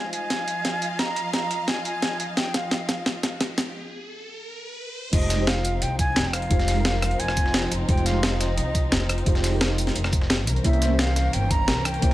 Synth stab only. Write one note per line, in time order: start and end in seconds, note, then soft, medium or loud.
0.00 3.76 G3 medium
0.00 3.73 G#3 medium
0.00 3.74 D#4 medium
0.00 3.75 F4 medium
0.00 3.76 C5 loud
5.11 5.34 G#3 medium
5.11 5.36 D#4 medium
5.11 5.37 F4 medium
5.11 5.37 G4 medium
5.11 5.38 C5 medium
5.36 6.47 G#3 medium
5.36 6.48 D#4 medium
5.36 6.49 F4 medium
5.40 6.50 G4 medium
5.40 6.50 C5 loud
6.49 6.72 G#3 medium
6.49 6.74 D#4 medium
6.49 6.75 F4 medium
6.49 6.75 G4 medium
6.49 6.75 C5 loud
6.74 7.85 G#3 medium
6.74 7.86 D#4 medium
6.74 7.87 F4 medium
6.78 7.87 G3 medium
6.78 7.88 A#4 loud
7.87 8.10 G#3 medium
7.87 8.12 D#4 medium
7.87 8.13 F4 medium
7.87 8.13 G4 medium
7.87 8.13 C5 medium
8.11 9.23 G#3 medium
8.11 9.24 D#4 medium
8.11 9.25 F4 medium
8.16 9.25 G4 medium
8.16 9.26 C5 loud
9.25 9.48 G#3 medium
9.25 9.50 D#4 medium
9.25 9.51 F4 medium
9.25 9.51 G4 medium
9.25 9.51 C5 loud
9.49 10.45 G#3 loud
9.49 10.45 D#4 medium
9.49 10.46 F4 medium
9.54 10.47 G4 medium
9.54 10.48 A#4 loud
10.63 10.86 A#3 medium
10.63 10.88 C#4 medium
10.63 10.88 E4 medium
10.63 10.89 G4 medium
10.63 10.89 C5 medium
10.87 12.00 E3 medium
10.87 11.99 A#3 medium
10.87 12.00 C#4 medium
10.92 12.01 G4 medium
10.92 12.02 C5 loud
12.01 12.14 A#3 medium
12.01 12.14 C#4 medium
12.01 12.14 E4 medium
12.01 12.14 G4 medium
12.01 12.14 C5 loud